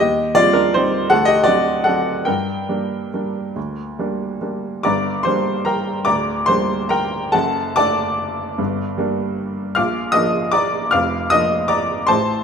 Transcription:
0.00 D#2 G4 D#5
0.35 G3 C4 F4 D5
0.53 D4 A#4
0.74 G3 C4 D#4 C5
1.10 D2 A4 F#5
1.25 G4 D#5
1.44 F#3 C4 D4 F#4 D5
1.84 F#3 C4 D4 A4 F#5
2.25 G2 A#4 G5
2.69 G3 A#3 D4
3.14 G3 A#3 D4
3.56 D2
3.99 G3 A#3 D4
4.41 G3 A#3 D4
4.83 G1 G2 D5 A#5 D6
5.23 G3 A#3 D4 C5 C6
5.65 A#4 G5 A#5
6.05 D1 D2 D5 A#5 D6
6.46 G3 A#3 D4 C5 C6
6.89 A#4 G5 A#5
7.32 F#1 F#2 A4 F#5 A5
7.76 A3 D4 D5 A5 D6
8.58 G1 G2
8.97 G3 A#3 D4
9.75 A#1 A#2 F5 D6 F6
10.12 F3 A#3 D4 D#5 D#6
10.52 D5 A#5 D6
10.91 F1 F2 F5 D6 F6
11.30 F3 A#3 D4 D#5 D#6
11.68 D5 A#5 D6
12.07 A1 A2 C5 A5 C6

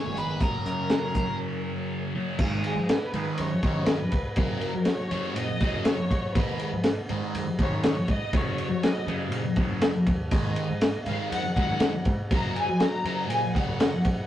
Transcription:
Already playing: G#2 D#3 F#3 G#3 B3 G#4 C#5
0.06 F#1
0.15 G#2 D#3 G#3 B4, closed hi-hat
0.38 F#1 F#2 C#3 F#3 C#4 A#4, kick, closed hi-hat
0.43 A#4
0.66 F#2, closed hi-hat
0.90 snare, closed hi-hat
1.15 F#2, kick, closed hi-hat
2.15 F#2 C#3 F#3
2.39 G#2 D#3 G#3, kick, crash
2.64 G#4, ride
2.76 G#2
2.88 B4, snare, ride
3.13 G#2 D#3 G#3, ride
3.38 F#2 C#5, ride
3.63 G#2 D#3 G#3, kick, ride
3.76 F#2
3.86 B4, snare, ride
4.12 C#2, kick, ride
4.36 F#2 C#3 F#3 A#4, kick, ride
4.61 ride
4.74 F#3
4.85 C#5, snare, ride
5.11 F#2 C#3 F#3, ride
5.35 A#2 D#5, ride
5.60 F#2 C#3 F#3, kick, ride
5.74 F#2
5.85 C#5, snare, ride
6.11 F#2, kick, ride
6.35 G#2 D#3 G#3 B4, kick, ride
6.59 ride
6.73 G#2
6.84 snare, ride
7.09 G#2 D#3 G#3, ride
7.35 F#2, ride
7.59 G#2 D#3 G#3 C#5, kick, ride
7.72 F#2
7.83 snare, ride
8.08 G#2 D#5, kick, ride
8.33 F#2 C#3 F#3 C#5, kick, ride
8.58 ride
8.69 F#3
8.83 D#5, snare, ride
9.07 F#2 C#3 F#3, ride
9.32 A#2, ride
9.56 F#2 C#3 F#3, kick, ride
9.69 F#2
9.81 snare, ride
10.07 D#2, kick, ride
10.31 G#2 D#3 G#3 D#5, kick, ride
10.56 ride
10.70 G#2
10.81 snare, ride
11.05 G#2 G#3 F5, ride
11.09 D#3
11.31 F#2 F#5, ride
11.55 G#2 D#3 G#3 F#5, kick, ride
11.70 F#2
11.80 snare, ride
12.05 G#2, kick, ride
12.31 F#2 C#3 F#3 A#5, kick, ride
12.56 G#5, ride
12.69 F#3
12.80 A#5, snare, ride
13.04 F#2 C#3 F#3, ride
13.30 A#2 G#5, ride
13.55 F#2 C#3 F#3 F#5, kick, ride
13.68 F#2
13.80 snare, ride
14.05 F#2, kick, ride

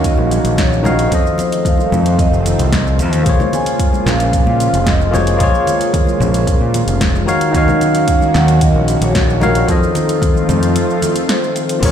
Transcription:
Already playing: D#2 D#3 F#3 A#3 C#4 D#4 F#4 C#5 F5
0.04 D#5, kick, closed hi-hat, shaker
0.17 A#1, high conga
0.31 closed hi-hat, shaker
0.44 A#1, closed hi-hat, shaker
0.58 C#5, kick, snare, closed hi-hat, shaker
0.73 shaker
0.83 D#3 D#4 F#4 C#5 D#5 F5, high conga, low conga, shaker
0.99 closed hi-hat, shaker
1.08 F2 D#3 F3 A3 C4 F4 A4, kick, closed hi-hat
1.13 C5 D#5, shaker
1.27 shaker
1.38 C5, closed hi-hat, low conga, shaker
1.52 closed hi-hat, shaker
1.65 F5, kick, closed hi-hat, low conga, shaker
1.78 high conga, shaker
1.92 F2, low conga, shaker
2.06 closed hi-hat, shaker
2.13 F5
2.19 D#5, kick, closed hi-hat, shaker
2.32 F1, shaker
2.46 closed hi-hat, low conga, shaker
2.59 C2, closed hi-hat, shaker
2.72 kick, snare, closed hi-hat, shaker
2.87 shaker
2.99 F2, closed hi-hat, shaker
3.12 D#2, closed hi-hat, shaker
3.23 A#1 C#3 F3 G#3 A#3 F4 G#4, kick, closed hi-hat
3.27 C5 C#5, shaker
3.40 low conga, shaker
3.53 G#5, closed hi-hat, low conga, shaker
3.66 closed hi-hat, shaker
3.79 kick, closed hi-hat, shaker
3.93 high conga, shaker
4.06 A#1 F5, snare, low conga, shaker
4.20 closed hi-hat, shaker
4.33 kick, closed hi-hat, shaker
4.46 A#2, high conga
4.60 closed hi-hat, shaker
4.73 F1, closed hi-hat, shaker
4.86 D#5, kick, snare, closed hi-hat, shaker
5.01 shaker
5.11 A#3 F4 G#4 C5 C#5, high conga, low conga, shaker
5.27 closed hi-hat, shaker
5.37 A#1 A#3 F4 G#4, kick, closed hi-hat
5.41 A#4 C#5, shaker
5.55 shaker
5.67 closed hi-hat, low conga, shaker
5.81 closed hi-hat, shaker
5.94 kick, closed hi-hat, low conga, shaker
6.07 high conga, shaker
6.20 A#1, low conga, shaker
6.34 closed hi-hat, shaker
6.47 kick, closed hi-hat, shaker
6.61 A#2
6.74 closed hi-hat, low conga, shaker
6.87 F1, closed hi-hat, shaker
7.01 kick, snare, closed hi-hat, shaker
7.15 shaker
7.26 D#3 F#3 A#3 C#4 D#4 F#4 C#5 F5, shaker
7.41 closed hi-hat, shaker
7.51 D#2 D#3 D#4 F#4, kick, closed hi-hat
7.55 C#5 D#5 F5, shaker
7.68 low conga, shaker
7.81 closed hi-hat, low conga, shaker
7.95 F5, closed hi-hat, shaker
8.08 kick, closed hi-hat, shaker
8.21 high conga, shaker
8.34 D#2 F#5, snare, low conga, shaker
8.48 closed hi-hat, shaker
8.61 D#5, kick, closed hi-hat, shaker
8.74 A#1, high conga
8.88 closed hi-hat, shaker
9.01 A#1 C#5, closed hi-hat, shaker
9.15 kick, snare, closed hi-hat, shaker
9.30 shaker
9.40 D#3 D#4 F#4 A#4 C#5 F5, high conga, low conga, shaker
9.55 closed hi-hat, shaker
9.65 F2 F3 A3 C4 F4 A4, kick, closed hi-hat
9.69 A4 C5 D#5, shaker
9.83 shaker
9.95 A4, closed hi-hat, low conga, shaker
10.09 closed hi-hat, shaker
10.22 kick, closed hi-hat, low conga, shaker
10.35 high conga, shaker
10.49 F2, closed hi-hat, low conga, shaker
10.63 closed hi-hat, shaker
10.76 closed hi-hat, shaker
10.90 shaker
11.02 closed hi-hat, low conga, shaker
11.16 closed hi-hat, shaker
11.29 C5, snare, closed hi-hat, shaker
11.44 shaker
11.56 closed hi-hat, shaker
11.69 closed hi-hat, shaker
11.79 A#1 C#3 G#3 A#3 F4 G#4, kick, closed hi-hat, crash, high bongo
11.83 F3 A#4 C#5, shaker

